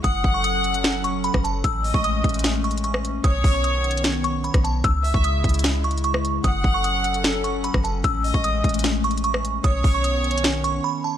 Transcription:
<<
  \new Staff \with { instrumentName = "Synth bell" } { \time 4/4 \key a \lydian \tempo 4 = 150 dis'''8. cis'''16 dis'''4 r8 cis'''8 b''8 a''8 | e'''8. cis'''16 dis'''4 r8 cis'''8 cis'''4 | dis'''8. cis'''16 dis'''4 r8 cis'''8 b''8 a''8 | e'''8. cis'''16 dis'''4 r8 cis'''8 cis'''4 |
dis'''8. cis'''16 dis'''4 r8 cis'''8 b''8 a''8 | e'''8. cis'''16 dis'''4 r8 cis'''8 cis'''4 | dis'''8. cis'''16 dis'''4 r8 cis'''8 b''8 a''8 | }
  \new Staff \with { instrumentName = "Violin section" } { \time 4/4 \key a \lydian fis''2. r4 | r8 dis''4. r2 | cis''2. r4 | r8 e''4. r2 |
fis''2. r4 | r8 dis''4. r2 | cis''2. r4 | }
  \new Staff \with { instrumentName = "Analog synth pad" } { \time 4/4 \key a \lydian <fis cis' a'>1 | <gis a>1 | <dis b>1 | <cis gis e'>1 |
<fis cis' a'>1 | <gis a>1 | <dis b cis'>1 | }
  \new Staff \with { instrumentName = "808-style bass" } { \clef bass \time 4/4 \key a \lydian fis,,8 fis,,2~ fis,,8. fis,,8. | a,,8. a,,8. a,,2~ a,,8 | b,,8 b,,2~ b,,8. b,,8. | cis,8. cis,8. cis,2~ cis,8 |
fis,,8 fis,,2~ fis,,8. fis,,8. | a,,8. a,,8. a,,2~ a,,8 | b,,8 b,,2~ b,,8 r4 | }
  \new DrumStaff \with { instrumentName = "Drums" } \drummode { \time 4/4 <hh bd>8 bd8 hh8 hh16 hh16 <hh sn>8 hh8 hh16 <bd ss>16 hh8 | <hh bd>8 hho16 bd16 hh8 <hh bd>32 hh32 hh32 hh32 \tuplet 3/2 { <hh sn>16 r16 r16 hh16 hh16 hh16 } hh16 ss16 hh8 | <hh bd>8 <hho bd>8 \tuplet 3/2 { hh16 r16 r16 hh16 hh16 hh16 } <hh sn>8 hh8 hh16 <hh bd ss>16 hh8 | <hh bd>8 hho16 bd16 hh8 <hh bd>32 hh32 hh32 hh32 \tuplet 3/2 { <hh sn>16 r16 r16 hh16 hh16 hh16 } hh16 ss16 hh8 |
<hh bd>8 bd8 hh8 hh16 hh16 <hh sn>8 hh8 hh16 <bd ss>16 hh8 | <hh bd>8 hho16 bd16 hh8 <hh bd>32 hh32 hh32 hh32 \tuplet 3/2 { <hh sn>16 r16 r16 hh16 hh16 hh16 } hh16 ss16 hh8 | <hh bd>8 <hho bd>8 \tuplet 3/2 { hh16 r16 r16 hh16 hh16 hh16 } <hh sn>8 hh8 r4 | }
>>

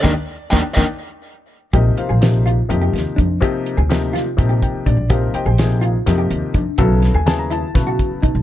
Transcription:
<<
  \new Staff \with { instrumentName = "Lead electric guitar" } { \time 7/8 \key ees \major \tempo 4 = 124 <d'' ees'' g''>8 r8 <d'' ees'' g''>8 <d'' ees'' g''>8 r4. | \key bes \mixolydian r2. r8 | r2. r8 | r2. r8 |
r2. r8 | }
  \new Staff \with { instrumentName = "Clean electric guitar" } { \time 7/8 \key ees \major <bes d' ees'>8 r8 <bes d' ees'>8 <bes d' ees'>8 r4. | \key bes \mixolydian g'8 r16 aes'8 r16 f'8 r16 g'8 r16 d'8 | g'8 r16 aes'8 r16 f'8 r16 g'8 r16 d'8 | g'8 r16 aes'8 r16 f'8 r16 g'8 r16 d'8 |
fis'8 r16 gis'8 r16 e'8 r16 fis'8 r16 ees'8 | }
  \new Staff \with { instrumentName = "Grand piano" } { \time 7/8 \key ees \major <bes d' ees'>8 r8 <bes d' ees'>8 <bes d' ees'>8 r4. | \key bes \mixolydian <bes' c'' ees''>8 <f' bes' c'' f''>4 r2 | r2 r8 g''8 d''8 | <f' bes' c'' f''>8 <g' c'' ees'' g''>4 r2 |
r8. gis''16 a''16 bes''16 a''2 | }
  \new Staff \with { instrumentName = "Grand piano" } { \time 7/8 \key ees \major r2. r8 | \key bes \mixolydian <c f bes ees' g'>8. r16 <c f bes ees' g'>8. r16 <c f bes ees' g'>4 r8 | <c f bes ees' g'>8. r16 <c f bes ees' g'>8. r16 <c f bes ees' g'>4 r8 | <c f bes ees' g'>8. r16 <c f bes ees' aes'>8. r16 <c f bes ees' g'>4 r8 |
<cis fis b e' a'>8. r16 <cis fis b e' gis'>8. r16 <cis fis b e' b'>4 r8 | }
  \new Staff \with { instrumentName = "Trombone" } { \clef bass \time 7/8 \key ees \major ees8 r8 ees8 ees8 r4. | \key bes \mixolydian r2. r8 | r2. r8 | r2. r8 |
r2. r8 | }
  \new Staff \with { instrumentName = "Upright bass" } { \clef bass \time 7/8 \key ees \major ees,16 r8. ees,16 r16 ees,16 r4. r16 | \key bes \mixolydian bes,,8 r16 bes,,4~ bes,,16 f,8 ees,16 r16 f,8 | r8. d,4~ d,16 bes,8 r8 bes,16 bes,,16~ | bes,,8 r16 bes,,4~ bes,,16 f,8 ees,16 r16 f,16 r16 |
b,,8. ees,4~ ees,16 b,8 r8 b,16 b,,16 | }
  \new DrumStaff \with { instrumentName = "Drums" } \drummode { \time 7/8 <bd sn>4 <bd sn>8 <bd sn>8 r4. | <hh bd>8 hh8 <hh sn>8 hh8 hh8 <hh sn>8 <hh bd>8 | <hh bd>8 hh8 <hh sn>8 <hh sn>8 <hh bd>8 <hh bd>8 <hh bd>8 | <hh bd>8 hh8 <hh sn>8 hh8 <hh sn>8 hh8 <hh bd>8 |
<hh bd>8 <hh sn>8 <hh sn>8 hh8 <hh bd sn>8 <hh bd>8 <hh bd>8 | }
>>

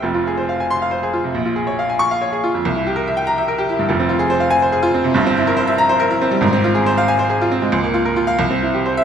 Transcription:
\new Staff \with { instrumentName = "Grand piano" } { \time 6/8 \key f \minor \tempo 4. = 93 << { r4. c'''8 r4 | r4. des'''8 r4 | r4. bes''8 r4 | r4. aes''8 r4 |
r4. bes''8 r4 | r4. aes''8 r4 | r4 r16 f''16 r4 r16 e''16 | } \\ { <f,, f,>16 f'16 aes'16 c''16 f''16 aes''8 f''16 c''16 aes'16 f'16 c16 | bes,,16 f'16 aes'16 des''16 f''16 aes''8 f''16 des''16 aes'16 f'16 f,16 | c,16 e'16 g'16 bes'16 e''16 g''8 e''16 bes'16 g'16 e'16 g,16 | <f,, f,>16 c'16 f'16 aes'16 c''16 f''8 c''16 aes'16 f'16 c'16 c16 |
<g,, g,>16 c'16 e'16 bes'16 c''16 e''8 c''16 bes'16 e'16 c'16 g16 | <aes,, aes,>16 c'16 f'16 aes'16 c''16 f''8 c''16 aes'16 f'16 c'16 aes16 | des,16 bes16 f'16 bes'16 f'8 c,16 c'16 e'16 g'16 c''8 | } >> }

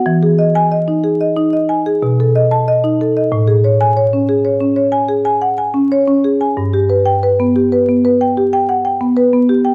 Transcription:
\new Staff \with { instrumentName = "Marimba" } { \time 5/4 \key a \mixolydian \tempo 4 = 93 << { r8. gis''8 r2 r8 a''8 r8. | r8. gis''8 r2. r8. | r8. g''8 r2. r8. | } \\ { e16 gis'16 dis''8 dis''16 dis'16 gis'16 dis''16 dis'16 dis''16 gis''16 gis'16 b,16 a'16 dis''8 dis''16 dis'16 a'16 dis''16 | a,16 gis'16 cis''8 cis''16 cis'16 gis'16 cis''16 cis'16 cis''16 gis''16 gis'16 gis''16 fis''16 gis''16 cis'16 cis''16 cis'16 gis'16 gis''16 | g,16 g'16 b'8 b'16 b16 g'16 b'16 b16 b'16 g''16 g'16 g''16 fis''16 g''16 b16 b'16 b16 g'16 g''16 | } >> }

